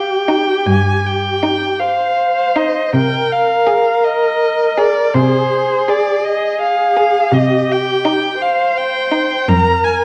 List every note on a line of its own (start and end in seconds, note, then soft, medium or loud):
0.00 1.81 G4 soft
0.00 0.67 G5 soft
0.28 0.57 D#4 soft
0.66 1.58 G2 soft
0.66 1.07 G#5 soft
1.05 1.80 G5 soft
1.43 1.70 D#4 soft
1.79 2.96 C5 soft
1.79 2.58 F5 soft
2.56 2.84 D#4 soft
2.56 2.94 D#5 soft
2.94 3.83 C3 soft
2.94 5.17 A#4 soft
2.94 3.34 G5 soft
3.33 4.06 F5 soft
3.67 3.94 G#4 soft
4.04 4.79 D#5 soft
4.77 5.05 G#4 soft
4.77 5.15 D5 soft
5.14 6.04 C3 soft
5.14 6.24 G#4 soft
5.14 5.90 C5 soft
5.88 6.16 G#4 soft
5.88 6.26 D5 soft
6.24 7.33 G#4 soft
6.24 6.61 D#5 soft
6.61 7.35 F5 soft
6.97 7.24 G#4 soft
7.32 8.21 C3 soft
7.32 8.40 G4 soft
7.32 7.73 D#5 soft
7.71 8.43 G5 soft
8.05 8.32 D#4 soft
8.40 9.50 C5 soft
8.40 8.79 F5 soft
8.77 9.50 G5 soft
9.12 9.39 D#4 soft
9.48 10.04 F2 soft
9.48 10.04 A#4 soft
9.48 9.85 A#5 medium
9.84 10.04 G#5 soft